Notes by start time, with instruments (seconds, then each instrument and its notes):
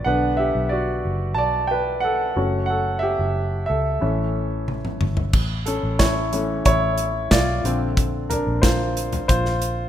0.04 fingered electric bass B1, grand piano D3 B3 D4 B4 F#5
0.37 grand piano G4 E5
0.55 fingered electric bass B1
0.69 grand piano F#4 D5
1.05 fingered electric bass F#1
1.34 fingered electric bass B1, grand piano D5 A5
1.67 grand piano B4 G5
2.00 grand piano A4 F#5
2.36 fingered electric bass F#1, grand piano A3 C#4 F#4
2.66 grand piano A4 F#5
2.99 grand piano G4 E5
3.19 fingered electric bass F#1
3.66 fingered electric bass C#2, grand piano A4 E5
4.01 fingered electric bass A1, grand piano E3 A3 C#4
4.68 high tom
4.85 mid tom
5.01 fingered electric bass G1, mid tom
5.17 floor tom
5.33 fingered electric bass A1, kick, crash
5.66 grand piano C#4 A4, closed hi-hat
5.83 fingered electric bass A1
5.99 grand piano E4 C#5, kick, snare, closed hi-hat
6.32 grand piano E3 A3 C#4, closed hi-hat
6.65 fingered electric bass A1, grand piano E4 C#5, kick, closed hi-hat
6.98 closed hi-hat
7.31 fingered electric bass B1, grand piano F4 D5, kick, snare, closed hi-hat
7.64 fingered electric bass A#1, grand piano D3 C4 A4, closed hi-hat
7.97 kick, closed hi-hat
8.30 grand piano D4 A#4, closed hi-hat, floor tom
8.47 fingered electric bass A#1
8.62 grand piano F4 C5, kick, snare, closed hi-hat
8.97 closed hi-hat
9.12 closed hi-hat, floor tom
9.28 fingered electric bass A#1, grand piano F4 C5, kick, closed hi-hat
9.45 snare
9.62 closed hi-hat